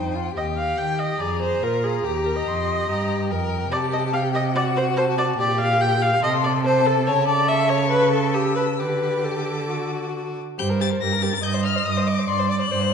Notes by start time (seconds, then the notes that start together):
Already playing: F2 D#4 C5 G5
0.15 F4
0.36 D#2 G4 D#5 G5
0.57 F5
0.77 D#3 G5
0.99 D#5
1.20 F2 G#4 D5 A#5
1.42 C5
1.63 A#2 F4 A#4
1.83 G#4
2.04 D#2 G4 A#5
2.26 A#4
2.36 D#5
2.47 F2 C6
2.89 G2 G4 A#5
3.30 F2 A#4 G5
3.71 C3 G4 D5 A5
3.93 D#5
4.13 F5 G5
4.35 D#5
4.54 F#4 D5 F#5
4.76 C5
4.96 C5 A5
5.18 D5
5.39 A#2 G4 D5 G5
5.60 F5
5.81 G5
6.02 F5
6.23 C3 A4 D#5 C6
6.44 D5
6.65 C5 A5
6.86 A4
7.06 C#3 C#5 A5
7.28 D5
7.48 E5 C#6
7.69 C#5
7.91 B4
8.11 A4
8.34 G4 E6
8.55 B4
8.79 D3 G4 B4 D6
9.24 A4
9.69 F#4
10.58 G2 G4 C5 G6
10.70 A#4
10.80 G4 A6
10.91 A#4
11.01 G2 G4 A#4 A#6
11.12 A#4
11.22 G4 A6
11.33 A#4
11.43 G2 D#5 G6
11.54 C5
11.65 D#5 F6
11.76 C5
11.86 G2 D#5 D#6
11.97 C5
12.07 D#5 D6
12.19 C5
12.28 G2 D5 C6
12.39 C5
12.49 D5 D6
12.59 C5 F#6
12.69 G2 C5 D5
12.81 C5